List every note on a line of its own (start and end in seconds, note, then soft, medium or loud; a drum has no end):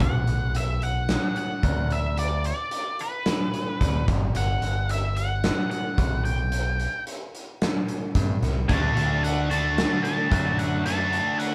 0.00 0.23 B1 medium
0.00 0.57 F#5 medium
0.00 kick loud
0.00 closed hi-hat medium
0.27 1.16 B1 medium
0.27 closed hi-hat medium
0.55 0.84 E5 medium
0.55 closed hi-hat medium
0.82 1.37 F#5 medium
0.82 closed hi-hat medium
1.09 snare loud
1.09 closed hi-hat medium
1.36 1.93 F#5 loud
1.36 closed hi-hat medium
1.63 2.51 D2 medium
1.63 kick medium
1.63 closed hi-hat medium
1.90 2.18 E5 medium
1.90 closed hi-hat medium
2.17 2.44 D5 medium
2.17 closed hi-hat medium
2.44 3.02 D5 medium
2.44 closed hi-hat medium
2.71 closed hi-hat medium
2.99 4.05 B4 medium
2.99 closed hi-hat medium
3.26 snare loud
3.26 closed hi-hat medium
3.54 closed hi-hat medium
3.81 4.03 D2 medium
3.81 kick medium
3.81 closed hi-hat loud
4.08 4.30 G1 medium
4.08 kick loud
4.08 snare soft
4.08 closed hi-hat medium
4.35 4.57 G1 medium
4.35 4.87 F#5 medium
4.35 closed hi-hat medium
4.62 5.50 G1 medium
4.62 closed hi-hat medium
4.89 5.16 E5 medium
4.89 closed hi-hat medium
5.17 5.69 F#5 medium
5.17 closed hi-hat medium
5.44 snare loud
5.44 closed hi-hat medium
5.71 6.24 F#5 medium
5.71 closed hi-hat medium
5.98 6.86 B1 medium
5.98 kick medium
5.98 closed hi-hat medium
6.25 7.02 G5 medium
6.25 closed hi-hat medium
6.52 closed hi-hat medium
6.80 closed hi-hat medium
7.07 closed hi-hat medium
7.35 closed hi-hat medium
7.62 snare loud
7.62 closed hi-hat medium
7.88 closed hi-hat medium
8.15 8.37 G2 medium
8.15 kick medium
8.15 closed hi-hat medium
8.42 8.64 C2 medium
8.42 snare soft
8.42 closed hi-hat medium
8.69 8.92 D2 medium
8.69 9.52 D3 medium
8.69 9.51 A3 medium
8.69 9.50 D4 loud
8.69 9.49 F#4 medium
8.69 9.24 A5 loud
8.69 kick loud
8.69 closed hi-hat medium
8.96 9.84 D2 medium
8.96 closed hi-hat medium
9.24 9.50 F#5 medium
9.24 closed hi-hat medium
9.50 10.30 D3 medium
9.50 10.31 A3 medium
9.50 10.30 D4 medium
9.50 10.30 F#4 medium
9.50 10.03 A5 medium
9.50 closed hi-hat medium
9.78 snare loud
9.78 closed hi-hat medium
10.04 10.59 A5 loud
10.04 closed hi-hat medium
10.31 11.20 F#2 loud
10.31 10.84 D3 medium
10.31 10.85 A3 medium
10.31 10.85 D4 medium
10.31 10.86 F#4 medium
10.31 kick medium
10.31 closed hi-hat medium
10.59 10.85 F#5 medium
10.59 closed hi-hat medium
10.85 11.55 D3 medium
10.85 11.55 A3 medium
10.85 11.55 D4 loud
10.85 11.55 F#4 medium
10.85 11.38 A5 medium
10.85 closed hi-hat medium
11.13 closed hi-hat medium
11.39 11.55 F#5 medium
11.39 closed hi-hat medium